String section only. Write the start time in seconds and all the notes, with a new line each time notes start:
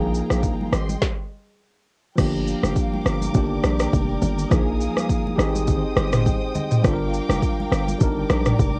Already playing: G#4 F5 G5 A#5
0.73 G#4 D#5 G5 C6
2.18 A#4 F5 G5 D6
3.35 D5 G5
4.52 F5 G#5 D#6
5.38 C5 D#5 G5 D#6
6.85 A#4 F5 D6
8.01 A#4 D5 D6